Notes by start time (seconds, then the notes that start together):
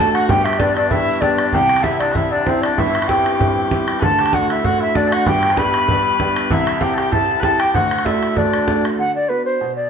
Already playing: D2 D3 A5
0.00 A3 D4 F#4 A4
0.13 F#4 F#5, bodhran
0.28 G1 G2 G4 G5, bodhran
0.45 E5, bodhran
0.53 bodhran
0.59 B3 D4 G4 D5, bodhran
0.68 bodhran
0.74 D4 E4 D5, bodhran
0.90 B3 D4 E4 G4 E5, bodhran
1.21 B3 D4 G4 D5, bodhran
1.38 bodhran
1.52 C2 C3 G4 G5, bodhran
1.69 bodhran
1.76 bodhran
1.81 C4 E4 A4 E5, bodhran
1.85 E4 G4
1.92 bodhran
2.00 D4 D5, bodhran
2.12 C4 E4 F#4 G4 E5, bodhran
2.17 E4
2.31 D4 D5
2.45 C4 E4 G4 C5, bodhran
2.62 D4 D5, bodhran
2.76 G1 G2 E4 E5, bodhran
2.95 bodhran
3.02 bodhran
3.08 C4 E4 G4 G5, bodhran
3.18 bodhran
3.26 bodhran
3.39 C4 E4 G4, bodhran
3.71 C4 E4 G4, bodhran
3.88 bodhran
4.00 D2 D3 A4 B4 A5, bodhran
4.19 G4, bodhran
4.26 bodhran
4.33 A3 D4 F#4 F#5, bodhran
4.42 bodhran
4.50 E4 E5, bodhran
4.64 A3 D4 F#4 F#5, bodhran
4.81 E4 E5
4.95 A3 D4 F#4 D5, bodhran
5.08 A4
5.12 F#4 F#5, bodhran
5.26 G1 G2 G4 G5, bodhran
5.43 bodhran
5.50 C5, bodhran
5.57 B3 D4 G4 B4 B5, bodhran
5.66 bodhran
5.74 bodhran
5.88 B3 D4 G4, bodhran
6.20 B3 D4 G4, bodhran
6.36 bodhran
6.51 C2 C3 E4 E5, bodhran
6.67 bodhran
6.81 C4 E4 G4 G5, bodhran
6.89 bodhran
6.94 A4 G5, bodhran
6.99 G4
7.11 C4 E4 G4 A4 A5, bodhran
7.40 C4 E4 G4 A4 B4 A5, bodhran
7.60 G4 G5, bodhran
7.74 D2 D3 F#4 F#5, bodhran
7.91 bodhran
7.99 bodhran
8.05 A3 D4 E4 F#4 E5, bodhran
8.14 bodhran
8.23 bodhran
8.36 A3 D4 F#4 D5, bodhran
8.54 bodhran
8.67 A3 D4 F#4, bodhran
8.85 bodhran
8.98 D3 F#5
9.15 D5
9.29 B3 D4 F#4 B4
9.45 C5
9.61 B2
9.76 D5